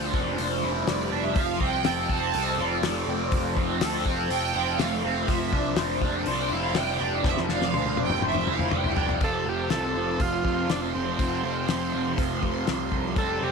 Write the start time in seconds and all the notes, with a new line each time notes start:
Already playing: D2 F3 G3 D4 C5
0.14 F1 D4, kick
0.38 F1 C5, open hi-hat
0.64 F1 E4
0.87 F1 G3 D5, snare, open hi-hat
1.12 F1 D4 E5
1.35 F1 F3, kick, open hi-hat
1.40 F5
1.60 C2 C4, kick
1.65 G5
1.85 F1 A4, snare, open hi-hat
2.09 F1 C4 A5, kick
2.34 C2 A4, open hi-hat
2.58 F1 F4 D5
2.83 F1 A3, snare, open hi-hat
3.07 F1 C4
3.32 F1 F3, kick, open hi-hat
3.57 F1 C4, kick
3.81 D2 A4, snare, open hi-hat
4.06 F1 C4, kick
4.30 F1 A4 G5, open hi-hat
4.54 F1 F4
4.79 F1 A3 F5, snare, open hi-hat
5.04 F1 C4 F5
5.28 F1 F3 E5, kick, open hi-hat
5.53 C2 D4, kick
5.76 F1 C5, snare, open hi-hat
6.02 F1 D4, kick
6.26 C2 C5, open hi-hat
6.30 D5
6.51 F1 E4 F5
6.74 F1 G3 G5, snare, open hi-hat
7.00 F1 D4
7.24 F1 F3 E5, kick, snare
7.37 snare
7.49 F1 D4 F5, snare
7.62 snare
7.74 D2 C5, high tom
7.86 high tom
7.97 F1 D4, high tom
8.02 G5
8.10 mid tom
8.22 F1 C5, mid tom
8.28 E5
8.35 mid tom
8.47 F1 E4 F5, mid tom
8.59 mid tom
8.71 F1 G3, mid tom
8.77 G5
8.84 floor tom
8.97 F1 D4, floor tom
9.09 floor tom
9.20 F1 F2 C3 F3 A4 C5 F5 C6, kick, open hi-hat
9.24 A4
9.46 F1 C3 F3 G4
9.70 C2 F2 C3 F3 A4, snare, open hi-hat
9.94 F1 C3 F3
10.20 F1 F4, kick, open hi-hat
10.44 F2 C3 F3, kick
10.68 F1 F2 C3 F3 D4, snare, open hi-hat
10.95 F1 C4
11.18 F1 F2 C3 F3, kick, open hi-hat
11.44 F1 C3 F3 C4
11.68 F1 F2 C3 F3 C4, snare, open hi-hat
11.93 F1 C3 F3
12.18 F1, kick, open hi-hat
12.41 F1 C3 F3, kick
12.66 C2 F2 C3 F3, snare, open hi-hat
12.92 C2, kick
13.16 F1 C3 G3 G4 A4 D5 E5, kick, open hi-hat
13.20 C4
13.40 F1 G3 C4 G4